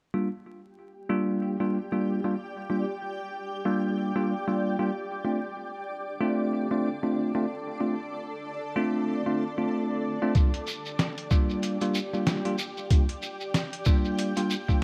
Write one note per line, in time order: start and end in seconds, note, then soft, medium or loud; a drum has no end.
0.14 0.28 G3 medium
0.14 0.28 A#3 medium
0.14 0.28 D4 medium
0.14 0.28 F4 medium
0.14 7.31 G4 medium
0.89 14.83 D5 medium
1.05 6.30 G5 medium
1.10 1.56 G3 medium
1.10 1.56 A#3 medium
1.10 1.56 D4 medium
1.10 1.56 F4 loud
1.60 1.77 G3 medium
1.60 1.77 A#3 medium
1.60 1.77 D4 medium
1.60 1.77 F4 medium
1.92 2.20 G3 medium
1.92 2.20 A#3 medium
1.92 2.20 D4 medium
1.92 2.20 F4 medium
2.24 2.34 G3 medium
2.24 2.34 A#3 medium
2.24 2.34 D4 medium
2.24 2.34 F4 medium
2.70 2.83 G3 medium
2.70 2.83 A#3 medium
2.70 2.83 D4 medium
2.70 2.84 F4 medium
3.65 4.11 G3 medium
3.65 4.11 A#3 medium
3.65 4.11 D4 medium
3.65 4.11 F4 medium
4.16 4.33 G3 medium
4.16 4.33 A#3 medium
4.16 4.33 D4 medium
4.16 4.33 F4 medium
4.48 4.75 G3 medium
4.48 4.75 A#3 medium
4.48 4.75 D4 medium
4.48 4.75 F4 medium
4.79 4.89 G3 medium
4.79 4.89 A#3 medium
4.79 4.89 D4 medium
4.79 4.89 F4 medium
5.25 5.38 A3 medium
5.25 5.38 C4 medium
5.25 5.38 D4 medium
5.25 12.30 D4 medium
5.25 5.38 F4 medium
6.20 6.66 A3 medium
6.20 6.66 C4 medium
6.20 6.66 D4 medium
6.20 6.67 F4 loud
6.20 10.35 A4 medium
6.71 6.88 A3 medium
6.71 6.88 C4 medium
6.71 6.88 D4 medium
6.71 6.88 F4 medium
7.03 7.30 A3 medium
7.03 7.30 C4 medium
7.03 7.30 D4 medium
7.03 7.30 F4 medium
7.35 7.45 A3 medium
7.35 7.45 C4 medium
7.35 7.45 D4 medium
7.35 7.45 F4 medium
7.80 7.94 A3 medium
7.80 7.94 C4 medium
7.80 7.94 D4 medium
7.80 7.94 F4 medium
8.76 9.22 A3 medium
8.76 9.22 C4 medium
8.76 9.22 D4 medium
8.76 9.22 F4 loud
9.26 9.43 A3 medium
9.26 9.43 C4 medium
9.26 9.43 D4 medium
9.26 9.43 F4 medium
9.58 10.17 A3 medium
9.58 10.17 C4 medium
9.58 10.17 D4 medium
9.58 10.17 F4 medium
10.22 10.32 A3 medium
10.22 10.32 C4 medium
10.22 10.32 D4 medium
10.22 10.32 F4 loud
10.35 10.49 G3 medium
10.35 10.49 A#3 medium
10.35 10.49 D4 medium
10.35 10.49 F4 medium
10.35 14.83 G4 medium
10.35 kick loud
10.35 closed hi-hat medium
10.35 shekere soft
10.54 closed hi-hat soft
10.67 shekere medium
10.86 shekere soft
10.99 snare loud
10.99 closed hi-hat medium
10.99 shekere soft
11.18 closed hi-hat soft
11.31 11.77 G3 loud
11.31 11.77 A#3 medium
11.31 11.77 D4 medium
11.31 11.77 F4 loud
11.31 kick loud
11.31 shekere medium
11.50 shekere soft
11.63 closed hi-hat medium
11.63 shekere soft
11.81 11.99 G3 medium
11.81 11.99 A#3 medium
11.81 11.99 D4 medium
11.81 11.99 F4 medium
11.81 closed hi-hat soft
11.81 shekere soft
11.95 shekere medium
12.13 12.41 G3 medium
12.13 12.41 A#3 medium
12.13 12.41 D4 medium
12.13 12.41 F4 medium
12.13 shekere soft
12.27 snare loud
12.27 closed hi-hat medium
12.27 shekere medium
12.45 12.55 G3 medium
12.45 12.55 A#3 medium
12.45 12.55 D4 medium
12.45 12.55 F4 medium
12.45 14.83 G5 medium
12.45 closed hi-hat soft
12.59 shekere medium
12.77 shekere soft
12.90 13.05 G3 medium
12.90 13.04 A#3 medium
12.90 13.05 D4 medium
12.90 13.05 F4 medium
12.90 kick loud
12.90 closed hi-hat medium
12.90 shekere soft
13.09 closed hi-hat soft
13.22 shekere medium
13.41 shekere soft
13.54 snare loud
13.54 closed hi-hat medium
13.54 shekere medium
13.73 closed hi-hat soft
13.85 14.32 G3 medium
13.85 14.32 A#3 medium
13.85 14.32 D4 medium
13.85 14.32 F4 loud
13.85 kick loud
13.85 shekere medium
14.05 shekere soft
14.18 closed hi-hat medium
14.18 shekere soft
14.36 14.54 G3 medium
14.36 14.54 A#3 medium
14.36 14.54 D4 medium
14.36 14.54 F4 medium
14.36 closed hi-hat soft
14.36 shekere soft
14.50 shekere loud
14.68 14.83 G3 medium
14.68 14.83 A#3 medium
14.68 14.83 D4 medium
14.68 14.83 F4 medium
14.68 kick medium
14.68 shekere soft